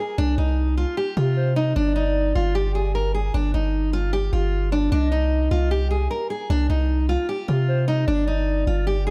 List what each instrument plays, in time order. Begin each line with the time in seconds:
0.00 steel-string acoustic guitar G#4
0.18 808-style bass C2, steel-string acoustic guitar D4
0.38 808-style bass C2, steel-string acoustic guitar D#4
0.77 steel-string acoustic guitar F4
0.97 steel-string acoustic guitar G4
1.17 808-style bass C3, steel-string acoustic guitar F4
1.37 soft synth lead C5
1.56 steel-string acoustic guitar D#4, soft synth lead D#5
1.76 808-style bass G1, steel-string acoustic guitar D4, soft synth lead D5
1.96 steel-string acoustic guitar D#4
2.35 808-style bass G1, steel-string acoustic guitar F4
2.55 steel-string acoustic guitar G4
2.75 steel-string acoustic guitar G#4
2.95 steel-string acoustic guitar A#4
3.14 steel-string acoustic guitar G#4
3.34 808-style bass G1, steel-string acoustic guitar D4
3.54 808-style bass G1, steel-string acoustic guitar D#4
3.93 steel-string acoustic guitar F4
4.13 steel-string acoustic guitar G4
4.33 808-style bass G1, steel-string acoustic guitar F4
4.72 steel-string acoustic guitar D4
4.92 808-style bass C2, steel-string acoustic guitar D4, soft synth lead D#5
5.12 steel-string acoustic guitar D#4
5.51 808-style bass C2, steel-string acoustic guitar F4
5.71 steel-string acoustic guitar G4
5.91 steel-string acoustic guitar G#4
6.11 steel-string acoustic guitar A#4
6.30 steel-string acoustic guitar G#4
6.50 808-style bass C2, steel-string acoustic guitar D4
6.70 808-style bass C2, steel-string acoustic guitar D#4
7.09 steel-string acoustic guitar F4
7.29 steel-string acoustic guitar G4
7.48 808-style bass C3, steel-string acoustic guitar F4
7.68 soft synth lead C5
7.88 steel-string acoustic guitar D#4, soft synth lead D#5
8.07 808-style bass G1, steel-string acoustic guitar D4, soft synth lead D5
8.27 steel-string acoustic guitar D#4
8.67 808-style bass G1, steel-string acoustic guitar F4
8.87 steel-string acoustic guitar G4
9.07 steel-string acoustic guitar G#4